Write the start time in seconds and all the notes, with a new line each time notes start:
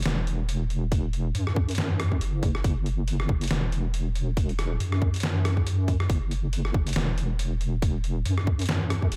0.02 E1, snare, closed hi-hat
0.06 closed hi-hat
0.27 closed hi-hat
0.49 closed hi-hat
0.70 closed hi-hat
0.92 kick, closed hi-hat
1.13 closed hi-hat
1.35 F#2, closed hi-hat
1.47 cross-stick
1.56 kick
1.69 closed hi-hat
1.71 closed hi-hat
1.75 snare, closed hi-hat
1.78 closed hi-hat
2.00 cross-stick, closed hi-hat
2.12 kick
2.21 F#1, closed hi-hat
2.43 kick, closed hi-hat
2.55 cross-stick
2.64 F#1, kick, closed hi-hat
2.86 closed hi-hat
3.08 closed hi-hat
3.20 cross-stick
3.29 kick
3.41 closed hi-hat
3.44 closed hi-hat
3.48 snare, closed hi-hat
3.51 E1, closed hi-hat
3.72 closed hi-hat
3.94 closed hi-hat
4.15 closed hi-hat
4.37 kick, closed hi-hat
4.49 closed hi-hat
4.59 cross-stick, closed hi-hat
4.80 F#2, closed hi-hat
4.92 cross-stick
5.02 kick
5.14 closed hi-hat
5.16 closed hi-hat
5.20 snare, closed hi-hat
5.23 closed hi-hat
5.45 cross-stick, closed hi-hat
5.57 kick
5.67 closed hi-hat
5.88 kick, closed hi-hat
6.00 cross-stick
6.10 F#1, kick, closed hi-hat
6.31 closed hi-hat
6.53 closed hi-hat
6.65 cross-stick
6.74 kick
6.87 closed hi-hat
6.89 closed hi-hat
6.93 E1, snare, closed hi-hat
6.96 closed hi-hat
7.18 closed hi-hat
7.39 closed hi-hat
7.61 closed hi-hat
7.82 kick, closed hi-hat
8.04 closed hi-hat
8.25 F#2, closed hi-hat
8.38 cross-stick
8.47 kick
8.59 closed hi-hat
8.61 closed hi-hat
8.66 snare, closed hi-hat
8.69 closed hi-hat
8.90 cross-stick, closed hi-hat
9.02 kick
9.12 F#1, closed hi-hat